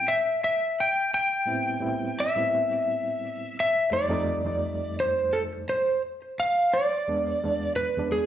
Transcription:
0.08 0.43 E5 medium
0.44 0.80 E5 medium
0.80 1.13 G5 medium
1.14 2.22 G5 loud
1.46 1.77 A2 medium
1.46 1.77 G3 medium
1.46 1.78 B3 medium
1.46 1.78 C4 medium
1.46 1.78 E4 medium
1.80 2.27 A2 medium
1.80 2.27 G3 medium
1.80 2.28 B3 medium
1.80 2.28 C4 medium
1.80 2.28 E4 medium
2.20 3.59 E5 loud
2.35 3.55 A2 medium
2.35 3.55 G3 medium
2.35 3.55 B3 medium
2.35 3.55 C4 medium
2.35 3.56 E4 medium
3.60 3.92 E5 medium
3.91 4.08 F2 medium
3.91 4.08 G3 medium
3.91 4.09 A3 medium
3.91 4.09 D#4 medium
3.91 5.00 D5 medium
4.09 4.40 F2 medium
4.09 4.40 G3 medium
4.09 4.41 A3 medium
4.09 4.41 D#4 medium
4.44 5.64 F2 medium
4.44 5.65 G3 medium
4.44 5.65 A3 medium
4.44 5.65 D#4 medium
5.00 5.35 C5 medium
5.33 5.42 A4 medium
5.69 6.01 C5 medium
6.40 6.75 F5 loud
6.74 7.76 D5 loud
7.08 7.38 E2 medium
7.08 7.38 G#3 medium
7.08 7.39 B3 medium
7.08 7.39 D4 medium
7.44 7.89 E2 medium
7.44 7.89 G#3 medium
7.44 7.89 B3 medium
7.44 7.90 D4 medium
7.76 8.12 B4 medium
7.97 8.26 E2 medium
7.97 8.26 G#3 medium
7.97 8.26 B3 medium
7.97 8.26 D4 medium
8.12 8.26 G#4 medium

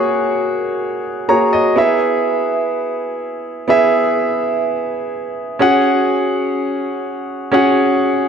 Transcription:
0.00 1.25 A#3 medium
0.00 1.25 F#4 medium
0.00 1.26 G#4 medium
0.00 1.26 C#5 medium
1.28 1.77 A#3 soft
1.28 1.77 F#4 soft
1.28 1.76 G#4 soft
1.28 1.77 C#5 medium
1.28 1.51 A#5 medium
1.53 1.75 D#5 medium
1.76 3.64 B3 medium
1.76 3.65 E4 medium
1.76 3.65 G#4 medium
1.76 3.66 E5 medium
3.68 5.56 B3 medium
3.68 5.57 E4 medium
3.68 5.57 G#4 medium
3.68 5.58 E5 medium
5.59 7.48 C#4 medium
5.59 7.49 F#4 medium
5.59 7.49 G#4 medium
5.59 7.49 F#5 medium
7.52 8.28 C#4 medium
7.52 8.28 F#4 medium
7.52 8.28 G#4 medium
7.52 8.28 F#5 medium

